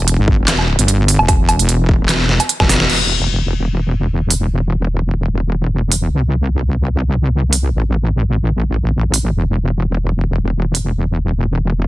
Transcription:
0.00 E1
0.08 closed hi-hat
0.18 G1
0.28 kick
0.39 E1
0.48 snare, clap, closed hi-hat
0.59 low woodblock
0.79 G1, closed hi-hat
0.88 closed hi-hat
1.08 open hi-hat
1.19 E1, low woodblock
1.28 kick, closed hi-hat, low woodblock
1.49 closed hi-hat, low woodblock
1.59 closed hi-hat
1.69 closed hi-hat
1.89 kick
2.00 E1
2.09 snare, clap, closed hi-hat
2.29 snare
2.40 closed hi-hat, low woodblock
2.49 closed hi-hat
2.60 E1, kick, snare, low woodblock
2.69 snare, open hi-hat
2.80 snare
2.90 E1, crash
4.31 open hi-hat
5.92 open hi-hat
6.12 C2
7.53 open hi-hat
7.73 A1
9.14 open hi-hat
9.34 E1
10.75 open hi-hat

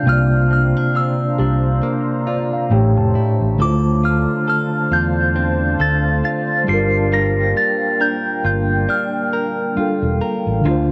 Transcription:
Already playing: A3 C4 D4 F5
0.03 C2 C3 A#3 C5 A#5
0.07 C3 F4 F6
0.12 D5
0.51 C4 F6
0.77 D4
0.95 F4 E6
1.38 C2 D4 G4
1.83 A#3
2.27 F4 D5
2.53 F5
2.69 A1 A2 A3 G4 G5 A5
2.74 C#5
2.97 F1 A5
3.15 E4
3.41 A1
3.55 D3 A3 D4 C5
3.59 D2 D3 F4 A4 F5 D6
3.65 C5
4.03 F4 F6
4.48 A4 F6
4.92 E2 F4 G6
5.36 C4
5.80 D2 A4 A6
6.24 F4 A6
6.64 G3 D4
6.68 G1 G3 A#3 D4 F4 G5 C7
6.73 A#4
7.12 G3 A#4 A#6
7.57 F4 A6
8.01 D4 A#4 G6
8.44 G1 F4 F5 G6
8.89 D4 F6
9.33 A#4
9.76 G3 D4 F4, muted fingered electric bass stroke
9.80 A4
10.03 E1
10.22 A#4
10.47 A1
10.61 D3 D4
10.66 D2 F4
10.71 C5

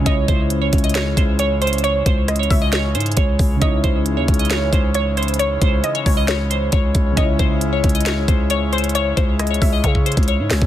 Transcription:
Already playing: C#3 E3 G#3
0.01 C#3 C#4
0.06 C#2 C#4 C#5 D#5, kick, closed hi-hat
0.11 E4
0.28 C#2 C5, kick, closed hi-hat
0.50 closed hi-hat
0.62 C#5
0.73 C#2, kick, closed hi-hat
0.78 closed hi-hat
0.84 D#5, closed hi-hat
0.89 closed hi-hat
0.95 C#5, snare, closed hi-hat
1.17 C#2 C5, kick, closed hi-hat
1.39 C#5, closed hi-hat
1.62 C5, closed hi-hat
1.67 closed hi-hat
1.73 closed hi-hat
1.78 closed hi-hat
1.84 C#5, closed hi-hat
2.06 C#2 C5, kick, closed hi-hat
2.28 D#5, cross-stick, closed hi-hat
2.36 C#5, closed hi-hat
2.43 closed hi-hat
2.50 C#2 E5, kick, open hi-hat
2.62 D#5
2.73 C#5, snare, closed hi-hat
2.95 G#2 C5, closed hi-hat
3.00 closed hi-hat
3.06 closed hi-hat
3.12 closed hi-hat
3.17 C#2 C#5, kick, closed hi-hat
3.39 C#2, kick, open hi-hat
3.56 C#3 C#4
3.62 C#2 E3 G#3 D#4 C#5 D#5, kick, closed hi-hat
3.67 E4
3.84 C#2 C5, kick, closed hi-hat
4.06 closed hi-hat
4.17 D#2 C#5
4.28 C#2, kick, closed hi-hat
4.34 closed hi-hat
4.39 D#5, closed hi-hat
4.45 closed hi-hat
4.50 C#5, snare, closed hi-hat
4.73 C#2 C5, kick, closed hi-hat
4.94 C#5, closed hi-hat
5.17 C5, closed hi-hat
5.23 closed hi-hat
5.28 closed hi-hat
5.34 closed hi-hat
5.39 C#5, closed hi-hat
5.62 C#2 C5, kick, closed hi-hat
5.84 D#5, closed hi-hat
5.95 C#5, closed hi-hat
6.06 C#2 C#5, kick, open hi-hat
6.17 D#5
6.28 C#5, snare, closed hi-hat
6.50 C5, closed hi-hat
6.72 C#2 C#5, kick, closed hi-hat
6.95 C#2, kick, closed hi-hat
7.12 C#3 C#4
7.17 C#2 C#3 E4 C#5 D#5, kick, closed hi-hat
7.23 E4
7.39 C#2 C5, kick, closed hi-hat
7.61 closed hi-hat
7.73 C#5
7.84 C#2, kick, closed hi-hat
7.89 closed hi-hat
7.95 D#5, closed hi-hat
8.00 closed hi-hat
8.06 C#5, snare, closed hi-hat
8.28 C#2 C5, kick, closed hi-hat
8.50 C#5, closed hi-hat
8.73 C5, closed hi-hat
8.78 closed hi-hat
8.84 closed hi-hat
8.89 closed hi-hat
8.95 C#5, closed hi-hat
9.17 C#2 C5, kick, closed hi-hat
9.39 D#5, cross-stick, closed hi-hat
9.47 C#5, closed hi-hat
9.54 closed hi-hat
9.62 C#2 E5, kick, open hi-hat
9.73 D#5
9.84 C#3 C#5, kick, closed hi-hat
9.95 kick
10.06 C5, closed hi-hat
10.12 closed hi-hat
10.17 C#2, kick, closed hi-hat
10.23 closed hi-hat
10.28 C#5, closed hi-hat
10.39 G#2
10.50 C#2, snare, open hi-hat
10.62 C#2, kick

